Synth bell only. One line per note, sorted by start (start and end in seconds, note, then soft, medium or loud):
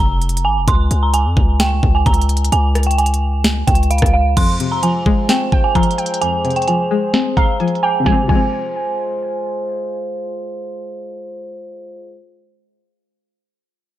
0.00 0.42 A#5 medium
0.45 0.65 G#5 medium
0.68 1.00 C6 loud
1.03 1.13 A#5 medium
1.14 1.57 G#5 medium
1.60 1.92 G5 medium
1.95 2.05 G#5 medium
2.06 2.50 A#5 medium
2.52 2.85 G#5 loud
2.87 2.97 G5 medium
2.98 3.42 G#5 medium
3.67 3.88 G5 medium
3.91 4.11 F5 medium
4.14 4.34 F5 medium
4.37 4.69 C6 loud
4.72 4.82 A#5 medium
4.83 5.26 G#5 medium
5.30 5.62 G5 medium
5.64 5.74 G#5 medium
5.76 6.19 A#5 medium
6.21 6.54 G#5 loud
6.56 6.66 G5 medium
6.68 7.11 G#5 medium
7.37 7.80 A#5 medium
7.83 8.03 G#5 medium
8.06 8.19 G#5 medium
8.29 9.41 G#5 medium